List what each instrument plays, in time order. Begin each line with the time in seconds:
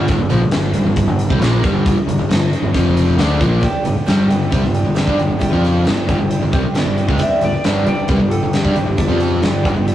0.08 fingered electric bass G1, overdriven electric guitar G2 D3, kick, closed hi-hat
0.19 fingered electric bass G1, overdriven electric guitar G2 D3
0.30 fingered electric bass A#1, overdriven electric guitar A#2 F3, closed hi-hat
0.41 fingered electric bass G1, overdriven electric guitar G2 D3
0.51 fingered electric bass G1, overdriven electric guitar G2 D3, snare, closed hi-hat
0.74 fingered electric bass G1, overdriven electric guitar G2 D3, closed hi-hat
0.85 fingered electric bass G1, overdriven electric guitar G2 D3
0.96 fingered electric bass G1, overdriven electric guitar G2 D3, kick, closed hi-hat
1.07 fingered electric bass G1, overdriven electric guitar G2 D3
1.19 closed hi-hat
1.29 fingered electric bass C2, overdriven electric guitar C3 G3, kick
1.39 fingered electric bass A#1, overdriven electric guitar A#2 F3 A#3, snare, closed hi-hat
1.63 fingered electric bass G1, overdriven electric guitar G2 D3 G3, kick, closed hi-hat
1.86 kick, closed hi-hat
1.96 muted fingered electric bass stroke, muted overdriven electric guitar stroke
2.06 fingered electric bass G1, overdriven electric guitar G2 D3, closed hi-hat
2.19 fingered electric bass G1, overdriven electric guitar G2 D3
2.29 fingered electric bass G1, overdriven electric guitar G2 D3, snare, closed hi-hat
2.53 closed hi-hat
2.62 fingered electric bass G1, overdriven electric guitar G2 D3
2.73 fingered electric bass F1, overdriven electric guitar F2 C3 F3, kick, closed hi-hat
2.97 closed hi-hat
3.17 fingered electric bass D2, overdriven electric guitar D3 A3 D4, snare, closed hi-hat
3.39 fingered electric bass A#1, overdriven electric guitar A#2 F3 A#3, kick, closed hi-hat
3.60 steel-string acoustic guitar G2 D3 G3 B3 D4 G4, muted overdriven electric guitar stroke, muted fingered electric bass stroke, kick, closed hi-hat
3.81 steel-string acoustic guitar G3 B3 D4 G4, closed hi-hat
3.86 fingered electric bass G1, overdriven electric guitar G2 D3
3.96 muted overdriven electric guitar stroke, muted fingered electric bass stroke
4.06 fingered electric bass G1, steel-string acoustic guitar G2 D3 G3 B3 D4 G4, overdriven electric guitar G2 D3 G3, snare, closed hi-hat
4.27 fingered electric bass G1, overdriven electric guitar G2 D3, steel-string acoustic guitar G3 B3 D4 G4, closed hi-hat
4.50 fingered electric bass C2, overdriven electric guitar C3 G3, steel-string acoustic guitar G3 B3 D4 G4, kick, closed hi-hat
4.62 fingered electric bass G1, overdriven electric guitar G2 D3, snare
4.73 steel-string acoustic guitar G3 B3 D4 G4, closed hi-hat
4.85 fingered electric bass G1, overdriven electric guitar G2 D3
4.95 steel-string acoustic guitar G2 D3 G3 B3 D4 G4, snare, closed hi-hat
5.07 fingered electric bass G2, overdriven electric guitar G3 D4, kick
5.18 fingered electric bass G1, overdriven electric guitar G2 D3, steel-string acoustic guitar G3 B3 D4 G4, closed hi-hat
5.28 fingered electric bass G1, overdriven electric guitar G2 D3
5.39 fingered electric bass G1, steel-string acoustic guitar G2 D3 G3 B3 D4 G4, overdriven electric guitar G2 D3, kick, closed hi-hat
5.50 fingered electric bass F2, overdriven electric guitar F3 C4 F4
5.61 steel-string acoustic guitar G3 B3 D4 G4, closed hi-hat
5.84 fingered electric bass G1, steel-string acoustic guitar G2 D3 G3 B3 D4 G4, overdriven electric guitar G2 D3, snare, closed hi-hat
6.06 fingered electric bass G1, overdriven electric guitar G2 D3, steel-string acoustic guitar G3 B3 D4 G4, kick, closed hi-hat
6.18 fingered electric bass G1, overdriven electric guitar G2 D3
6.30 steel-string acoustic guitar G3 B3 D4 G4, closed hi-hat
6.41 fingered electric bass G1, overdriven electric guitar G2 D3
6.52 fingered electric bass C2, overdriven electric guitar C3 G3, steel-string acoustic guitar G3 B3 D4 G4, kick, closed hi-hat
6.63 muted overdriven electric guitar stroke, muted fingered electric bass stroke
6.74 fingered electric bass G1, steel-string acoustic guitar G2 D3 G3 B3 D4 G4, overdriven electric guitar G2 D3, snare, closed hi-hat
6.85 fingered electric bass G1, overdriven electric guitar G2 D3
6.96 steel-string acoustic guitar G3 B3 D4 G4, closed hi-hat
7.07 fingered electric bass C#2, overdriven electric guitar C#3 G#3, kick
7.17 steel-string acoustic guitar G2 D3 G3 B3 D4 G4, muted overdriven electric guitar stroke, muted fingered electric bass stroke, kick, closed hi-hat
7.22 electric slide guitar E5
7.40 fingered electric bass G1, overdriven electric guitar G2 D3, steel-string acoustic guitar G3 B3 D4 G4, closed hi-hat
7.44 electric slide guitar D5
7.53 muted overdriven electric guitar stroke, muted fingered electric bass stroke
7.64 fingered electric bass G1, overdriven electric guitar G2 D3 G3, steel-string acoustic guitar G2 D3 G3 B3 D4 G4, electric slide guitar B4, snare, closed hi-hat
7.85 fingered electric bass G1, overdriven electric guitar G2 D3, steel-string acoustic guitar G3 B3 D4 G4, electric slide guitar D5, closed hi-hat
8.07 fingered electric bass C2, overdriven electric guitar C3 G3, steel-string acoustic guitar G3 B3 D4 G4, electric slide guitar B4, kick, closed hi-hat
8.19 fingered electric bass G1, overdriven electric guitar G2 D3
8.30 steel-string acoustic guitar G3 B3 D4 G4, electric slide guitar A4, closed hi-hat
8.42 fingered electric bass G1, overdriven electric guitar G2 D3
8.53 steel-string acoustic guitar G2 D3 G3 B3 D4 G4, electric slide guitar G4, snare, closed hi-hat
8.64 fingered electric bass G2, overdriven electric guitar G3 D4, kick
8.74 fingered electric bass G1, overdriven electric guitar G2 D3, steel-string acoustic guitar G3 B3 D4 G4, closed hi-hat
8.86 fingered electric bass G1, overdriven electric guitar G2 D3
8.97 fingered electric bass G1, steel-string acoustic guitar G2 D3 G3 B3 D4 G4, overdriven electric guitar G2 D3, kick, closed hi-hat
9.07 fingered electric bass F2, overdriven electric guitar F3 C4 F4
9.20 steel-string acoustic guitar G3 B3 D4 G4, closed hi-hat
9.41 fingered electric bass G1, overdriven electric guitar G2 D3, steel-string acoustic guitar G2 D3 G3 B3 D4 G4, snare, closed hi-hat
9.63 fingered electric bass G1, overdriven electric guitar G2 D3, steel-string acoustic guitar G3 B3 D4 G4, kick, closed hi-hat
9.74 fingered electric bass G1, overdriven electric guitar G2 D3
9.86 steel-string acoustic guitar G3 B3 D4 G4, closed hi-hat